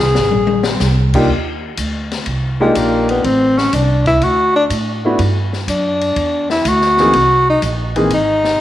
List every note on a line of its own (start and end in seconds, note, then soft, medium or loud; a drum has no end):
0.00 0.16 C2 medium
0.00 0.68 G#4 medium
0.15 0.32 G#1 medium
0.15 snare medium
0.31 0.80 A#1 medium
0.31 high tom medium
0.47 high tom medium
0.63 snare medium
0.80 1.28 C2 loud
0.80 snare medium
0.80 hi-hat pedal medium
1.14 1.28 A#3 medium
1.14 1.28 D4 medium
1.14 1.28 D#4 medium
1.14 1.28 F4 medium
1.14 1.28 G4 medium
1.14 kick medium
1.14 crash medium
1.29 1.77 D#2 medium
1.29 kick soft
1.77 2.25 D2 medium
1.77 kick soft
1.77 hi-hat pedal medium
1.77 ride medium
2.11 snare soft
2.11 ride soft
2.26 2.74 C2 medium
2.26 kick soft
2.26 ride medium
2.60 2.78 G#3 medium
2.60 3.21 A#3 medium
2.60 3.21 D4 medium
2.60 3.21 D#4 medium
2.60 3.21 F4 medium
2.60 3.21 G4 medium
2.75 3.22 A#1 medium
2.75 3.09 A#3 medium
2.75 kick soft
2.75 hi-hat pedal medium
2.75 ride medium
3.09 3.26 B3 medium
3.09 ride soft
3.24 3.71 A1 medium
3.24 3.59 C4 medium
3.24 kick soft
3.24 ride medium
3.58 3.76 C#4 medium
3.58 snare soft
3.73 4.20 C2 medium
3.73 4.06 D4 medium
3.73 kick soft
3.73 hi-hat pedal medium
3.73 ride medium
4.06 4.26 E4 medium
4.06 kick medium
4.06 ride soft
4.21 4.68 D2 medium
4.21 4.55 F#4 medium
4.21 kick soft
4.21 ride medium
4.56 4.65 D4 medium
4.70 5.17 A2 medium
4.70 kick soft
4.70 hi-hat pedal medium
4.70 ride medium
5.05 5.18 A3 medium
5.05 5.18 B3 medium
5.05 5.18 D4 medium
5.05 5.18 E4 medium
5.05 5.18 F#4 medium
5.19 5.66 G2 medium
5.19 kick soft
5.19 ride medium
5.53 snare soft
5.68 6.15 F#2 medium
5.68 6.46 D4 medium
5.68 kick soft
5.68 hi-hat pedal medium
5.68 ride medium
6.01 ride soft
6.16 6.63 E2 medium
6.16 kick soft
6.16 ride medium
6.50 6.70 E4 medium
6.50 snare soft
6.65 7.12 D2 medium
6.65 7.49 F#4 medium
6.65 kick soft
6.65 hi-hat pedal medium
6.65 ride medium
6.81 snare soft
6.97 7.13 E3 medium
6.97 7.12 A#3 medium
6.97 7.12 C4 medium
6.97 7.13 D#4 medium
6.97 7.13 G#4 medium
6.97 snare soft
7.13 7.61 C2 medium
7.13 kick soft
7.13 ride medium
7.49 7.62 D#4 medium
7.62 8.09 A#1 medium
7.62 kick soft
7.62 hi-hat pedal medium
7.62 ride medium
7.96 8.09 E3 medium
7.96 8.10 A#3 medium
7.96 8.09 C4 medium
7.96 8.09 D#4 medium
7.96 8.10 G#4 medium
7.96 ride soft
8.10 8.58 G#1 medium
8.10 8.61 D#4 medium
8.10 kick soft
8.10 ride medium
8.44 snare soft